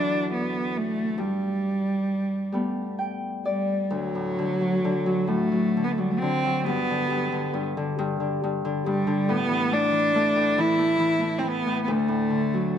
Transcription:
Already playing: harp D2 E3 F#3 A3 C4 D4, cello D4
0.33 cello B3
0.77 cello A3
1.18 harp G2, cello G3
2.52 harp G3 A3 B3
2.99 harp G5
3.45 cello G3, harp D5
3.84 cello G3
3.90 harp D2, cello F#3
4.15 harp A2
4.38 harp D3
4.61 harp F#3
4.84 harp D3
5.06 harp F#3
5.28 harp A2, cello A3
5.52 harp F#3
5.77 harp D3
5.84 cello B3
5.92 cello A3
5.98 harp F#3, cello G3
6.11 cello A3
6.19 harp D3, cello C4
6.44 harp F#3
6.64 harp G2, cello B3
6.90 harp D3
7.10 harp G2
7.32 harp D3
7.54 harp G2
7.77 harp D3
7.99 harp G2
8.20 harp D3
8.44 harp G2
8.65 harp D3
8.86 harp G2, cello G3
9.07 harp D3
9.29 harp A2, cello B3
9.49 harp E3
9.71 harp A3, cello D4
9.92 harp E3
10.15 harp A3
10.36 harp A2
10.58 harp E3, cello E4
10.79 harp A3
11.00 harp E3
11.21 harp A3
11.39 cello C4
11.43 harp E3
11.48 cello B3
11.67 harp A2
11.84 cello B3
11.88 harp D2, cello A3
12.08 harp A2
12.30 harp D3
12.54 harp F#3

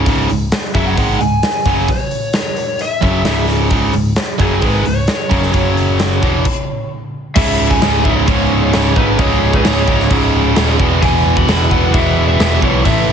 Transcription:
0.06 picked electric bass C#1, distorted electric guitar C#2 G#2 C#3, kick, open hi-hat
0.29 picked electric bass C#1, distorted electric guitar C#2 G#2, open hi-hat
0.52 snare, open hi-hat
0.75 picked electric bass F#1, distorted electric guitar F#2 C#3 F#3, lead electric guitar E5, kick, open hi-hat
0.86 lead electric guitar F#5
0.97 picked electric bass G#1, distorted electric guitar G#2 D#3 G#3, kick, open hi-hat
1.20 picked electric bass C#1, distorted electric guitar C#2 G#2, lead electric guitar G#5, open hi-hat
1.43 snare, open hi-hat
1.66 picked electric bass F#1, distorted electric guitar F#2 C#3 F#3, kick, snare, open hi-hat
1.88 lead electric guitar C#5, kick, open hi-hat
2.11 open hi-hat
2.33 lead electric guitar C#5, snare, open hi-hat
2.56 open hi-hat
2.79 lead electric guitar E5, open hi-hat
3.02 picked electric bass F#1, distorted electric guitar F#2 C#3 F#3, kick, open hi-hat
3.25 picked electric bass C#1, distorted electric guitar C#2 G#2 C#3, snare, open hi-hat
3.48 snare, open hi-hat
3.70 picked electric bass C#1, distorted electric guitar C#2 G#2 C#3, kick, open hi-hat
3.93 picked electric bass C#1, distorted electric guitar C#2 G#2, open hi-hat
4.16 snare, open hi-hat
4.39 picked electric bass F#1, distorted electric guitar F#2 C#3 F#3, lead electric guitar G#4, kick, open hi-hat
4.54 lead electric guitar G#4
4.62 picked electric bass G#1, distorted electric guitar G#2 D#3 G#3, lead electric guitar B4, kick, open hi-hat
4.85 picked electric bass C#1, distorted electric guitar C#2 G#2, lead electric guitar C#5, open hi-hat
5.07 snare, open hi-hat
5.31 picked electric bass F#1, distorted electric guitar F#2 C#3 F#3, kick, snare, open hi-hat
5.43 snare
5.54 picked electric bass F#1, distorted electric guitar F#2 C#3 F#3, kick, open hi-hat
5.77 open hi-hat
5.99 snare, open hi-hat
6.23 picked electric bass E1, distorted electric guitar E2 B2 E3, kick, open hi-hat
6.45 kick, crash
7.35 picked electric bass C#1, distorted electric guitar C#2 G#2 C#3, analog synth pad C#4 G#4 E5, lead electric guitar E5, kick, crash
7.59 picked electric bass C#1
7.70 lead electric guitar G#5, kick
7.82 picked electric bass C#1, distorted electric guitar C#2 G#2 C#3, snare, crash
8.04 picked electric bass C#1, distorted electric guitar C#2 G#2 C#3, lead electric guitar E5, kick
8.27 picked electric bass C#1, distorted electric guitar C#2 G#2 C#3, lead electric guitar C#5, kick, crash
8.52 picked electric bass C#1
8.61 lead electric guitar C#5
8.73 picked electric bass C#1, distorted electric guitar C#2 G#2 C#3, snare, crash
8.96 picked electric bass G#1, distorted electric guitar C#2 G#2 C#3, lead electric guitar B4, kick
9.19 picked electric bass C#1, distorted electric guitar C#2 G#2 C#3, lead electric guitar C#5, kick, crash
9.42 picked electric bass C#1
9.53 lead electric guitar B4, kick
9.65 picked electric bass C#1, distorted electric guitar C#2 G#2 C#3, lead electric guitar C#5, snare, crash
9.87 picked electric bass C#1, distorted electric guitar C#2 G#2 C#3, kick
10.00 snare
10.10 picked electric bass C#1, distorted electric guitar C#2 G#2 C#3, kick, crash
10.34 picked electric bass C#1
10.56 picked electric bass D#1, distorted electric guitar C#2 G#2 C#3, snare, crash
10.79 picked electric bass E1, distorted electric guitar E2 B2 E3, analog synth pad E4 B4 F#5, kick
11.02 picked electric bass E1, distorted electric guitar E2 B2 E3, lead electric guitar G#5, kick, crash
11.25 picked electric bass E1
11.37 lead electric guitar B5, kick
11.48 picked electric bass E1, distorted electric guitar E2 B2 E3, snare, crash
11.71 picked electric bass E1, distorted electric guitar E2 B2 E3, lead electric guitar F#5, kick
11.93 picked electric bass E1, distorted electric guitar E2 B2 E3, lead electric guitar E5, kick, crash
12.17 picked electric bass E1
12.28 lead electric guitar E5
12.39 picked electric bass E1, distorted electric guitar E2 B2 E3, snare, crash
12.62 picked electric bass B1, distorted electric guitar E2 B2 E3, lead electric guitar C#5, kick
12.85 picked electric bass A1, distorted electric guitar A2 E3 A3, analog synth pad A3 E4, lead electric guitar E5, kick, crash
13.08 picked electric bass A1

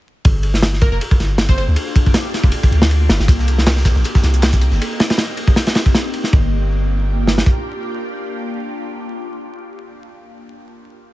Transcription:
0.25 808-style bass G1, ambient pad A#3 D4 F4 G4, kick, ride
0.43 ride
0.54 snare
0.62 snare, ride
0.73 snare
0.81 digital synth lead A#4, kick, ride
0.92 808-style bass F1, digital synth lead A#4
1.01 ride
1.11 kick
1.20 808-style bass G1, snare, ride
1.38 snare, ride
1.49 digital synth lead C5, kick
1.58 digital synth lead C5, ride
1.68 808-style bass D2
1.76 ride
1.96 kick, ride
2.06 kick
2.14 snare, ride
2.34 snare, ride
2.44 808-style bass F1, kick
2.52 ride
2.63 kick
2.71 808-style bass D2, ride
2.82 snare
2.91 ride
3.09 808-style bass G1, snare, ride
3.20 808-style bass G1, snare
3.28 808-style bass C2, ambient pad C4 D#4, kick, ride, tambourine
3.39 snare
3.48 ride, tambourine
3.58 snare
3.67 snare, ride, tambourine
3.76 snare
3.85 kick, snare, ride, tambourine
3.96 808-style bass A#1, snare
4.04 ride, tambourine
4.15 kick, snare
4.23 808-style bass C2, snare, ride, tambourine
4.34 closed hi-hat
4.42 snare, ride, tambourine
4.53 kick, closed hi-hat
4.61 ride, tambourine
4.72 808-style bass G1, snare
4.81 ride
5.00 snare, ride
5.10 snare, ride
5.18 snare, ride
5.37 ride
5.48 kick
5.56 snare, ride
5.67 snare, ride
5.75 snare, ride
5.86 kick
5.95 snare, ride
6.14 ride
6.24 snare
6.32 808-style bass G1, ambient pad A#3 D4 F4 G4, kick
7.27 snare
7.38 snare
7.46 kick

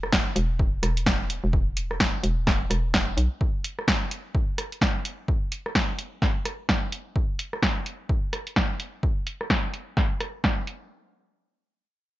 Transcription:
Already playing: fm bass E1
0.03 cross-stick
0.13 kick, snare
0.36 fm bass E1, closed hi-hat
0.59 kick
0.83 fm bass E1, cross-stick, closed hi-hat
0.97 closed hi-hat
1.06 kick, snare
1.30 closed hi-hat
1.44 fm bass E1
1.53 kick
1.77 closed hi-hat
1.91 cross-stick
2.00 kick, snare
2.23 fm bass E1, closed hi-hat
2.47 kick, snare
2.70 fm bass E1, cross-stick, closed hi-hat
2.94 kick, snare
3.17 fm bass B1, closed hi-hat
3.41 kick
3.64 closed hi-hat
3.79 cross-stick
3.88 kick, snare
4.11 closed hi-hat
4.35 kick
4.58 cross-stick, closed hi-hat
4.72 closed hi-hat
4.81 kick, snare
5.05 closed hi-hat
5.28 kick
5.52 closed hi-hat
5.66 cross-stick
5.75 kick, snare
5.99 closed hi-hat
6.22 kick, snare
6.45 cross-stick, closed hi-hat
6.69 kick, snare
6.92 closed hi-hat
7.16 kick
7.39 closed hi-hat
7.53 cross-stick
7.62 kick, snare
7.86 closed hi-hat
8.09 kick
8.33 cross-stick, closed hi-hat
8.47 closed hi-hat
8.56 kick, snare
8.80 closed hi-hat
9.03 kick
9.27 closed hi-hat
9.41 cross-stick
9.50 kick, snare
9.74 closed hi-hat
9.97 kick, snare
10.20 cross-stick, closed hi-hat
10.44 kick, snare
10.67 closed hi-hat

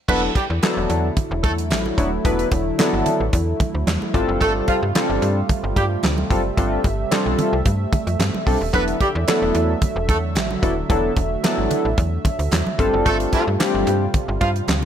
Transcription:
0.08 fm bass E1, analog synth pad D3 F#3 A3 E4, analog polysynth F#3 B3 D4 E4 A4, horn section B3 B4, kick, crash, muted conga
0.35 horn section G3 G4, kick, closed hi-hat, muted conga
0.50 fm bass E2
0.62 analog polysynth F#3 B3 D4 E4 A4, snare, clap, closed hi-hat, high conga
0.77 fm bass E1
0.90 fm bass E2, closed hi-hat
1.17 kick, closed hi-hat, muted conga, low conga
1.31 fm bass E1
1.44 fm bass E2, horn section A3 A4, kick, closed hi-hat, muted conga
1.58 closed hi-hat
1.71 fm bass A1, snare, clap, closed hi-hat, high conga
1.86 high conga
1.97 fm bass D#1, analog polysynth F#3 B3 D4 E4 F#4, kick, closed hi-hat
2.24 fm bass E1, analog polysynth F#3 B3 D4 E4 B4, kick, closed hi-hat, muted conga
2.39 closed hi-hat
2.52 fm bass E1, kick, closed hi-hat, muted conga
2.78 analog polysynth F#3 B3 D4 E4 A4, snare, clap, closed hi-hat, high conga
2.93 fm bass G1
3.06 closed hi-hat, low conga
3.20 fm bass A1
3.33 fm bass E2, kick, closed hi-hat, muted conga
3.60 kick, closed hi-hat, muted conga, low conga
3.75 fm bass D2
3.87 fm bass E2, snare, clap, closed hi-hat, high conga
4.02 high conga
4.14 fm bass G1, analog synth pad C3 G3 A3 F4, analog polysynth G3 C4 D4 F4 A4, kick, closed hi-hat
4.28 fm bass F#1
4.41 fm bass G1, horn section A3 A4, kick, closed hi-hat, muted conga
4.68 horn section F3 F4, kick, closed hi-hat, muted conga
4.83 fm bass G2
4.95 analog polysynth G3 C4 D4 F4 A4, snare, clap, closed hi-hat, high conga
5.10 fm bass G1
5.22 fm bass G2, closed hi-hat
5.49 kick, closed hi-hat, muted conga, low conga
5.64 fm bass G1
5.76 fm bass G2, horn section G3 G4, kick, closed hi-hat, muted conga
6.03 fm bass D2, snare, clap, closed hi-hat, high conga
6.18 high conga
6.30 fm bass F#1, analog polysynth G3 C4 D4 F4 A4, analog synth pad E5, kick, closed hi-hat
6.57 fm bass G1, analog polysynth G3 C4 D4 F4 A4, kick, closed hi-hat, muted conga
6.84 fm bass G1, kick, closed hi-hat, muted conga
7.11 analog polysynth G3 C4 D4 F4 A4, snare, clap, closed hi-hat, high conga
7.26 fm bass B1
7.39 closed hi-hat, low conga
7.53 fm bass C2
7.65 fm bass G2, kick, closed hi-hat, muted conga
7.93 kick, closed hi-hat, muted conga, low conga
8.07 fm bass F2, closed hi-hat
8.19 fm bass G2, snare, clap, closed hi-hat, high conga
8.34 high conga
8.46 fm bass B1, analog polysynth G3 C4 D4 F4 A4, kick, open hi-hat
8.61 fm bass D#1
8.73 fm bass E1, analog synth pad D3 F#3, analog polysynth F#3 B3 D4 E4 A4, horn section B3 B4, kick, closed hi-hat, muted conga
8.88 closed hi-hat
9.01 horn section G3 G4, kick, closed hi-hat, muted conga
9.15 fm bass E2
9.27 analog polysynth F#3 B3 D4 E4 A4, snare, clap, closed hi-hat, high conga
9.42 fm bass E1
9.55 fm bass E2, closed hi-hat
9.82 kick, closed hi-hat, muted conga, low conga
9.96 fm bass E1
10.09 fm bass E2, horn section A3 A4, kick, closed hi-hat, muted conga
10.35 fm bass A1, snare, clap, closed hi-hat, high conga
10.51 high conga
10.62 fm bass D#1, analog polysynth F#3 B3 D4 E4 A4, kick, closed hi-hat
10.89 fm bass E1, analog polysynth F#3 B3 D4 E4 A4, kick, closed hi-hat, muted conga
11.16 fm bass E1, kick, closed hi-hat, muted conga
11.43 analog polysynth F#3 B3 D4 E4 A4, snare, clap, closed hi-hat, high conga
11.58 fm bass G1
11.71 closed hi-hat, low conga
11.85 fm bass A1
11.98 fm bass E2, kick, closed hi-hat, muted conga
12.25 kick, closed hi-hat, muted conga, low conga
12.39 fm bass D2, closed hi-hat
12.52 fm bass E2, snare, clap, closed hi-hat, high conga
12.67 high conga
12.78 fm bass G1, analog synth pad C3 G3 A3 F4, analog polysynth G3 C4 D4 F4 A4, kick, closed hi-hat
12.93 fm bass F#1
13.06 fm bass G1, horn section A3 A4, kick, closed hi-hat, muted conga
13.20 closed hi-hat
13.33 horn section E3 E4, kick, closed hi-hat, muted conga
13.47 fm bass G2
13.59 analog polysynth G3 C4 D4 F4 G4, snare, clap, closed hi-hat, high conga
13.74 fm bass G1
13.87 fm bass G2, closed hi-hat
14.14 kick, closed hi-hat, muted conga, low conga
14.28 fm bass G1
14.41 fm bass G2, horn section F3 F4, kick, closed hi-hat, muted conga
14.56 closed hi-hat
14.68 fm bass D2, snare, clap, closed hi-hat, high conga

